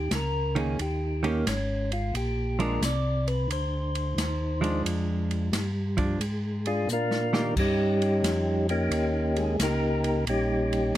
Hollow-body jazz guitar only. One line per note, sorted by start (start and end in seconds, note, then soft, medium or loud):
0.55 0.76 D#3 medium
0.55 0.77 A#3 medium
0.55 0.77 C#4 medium
1.23 1.44 D#3 medium
1.23 1.45 A#3 medium
1.23 1.45 C#4 medium
1.23 1.45 G4 medium
2.59 2.80 F3 medium
2.59 2.80 G#3 medium
2.59 2.80 D4 medium
4.61 5.48 F3 medium
4.61 5.48 G#3 medium
4.61 5.49 D4 medium
5.97 6.18 F3 medium
5.97 6.19 D4 medium
7.33 7.54 D#3 medium
7.33 7.54 A#3 medium
7.33 7.55 G4 medium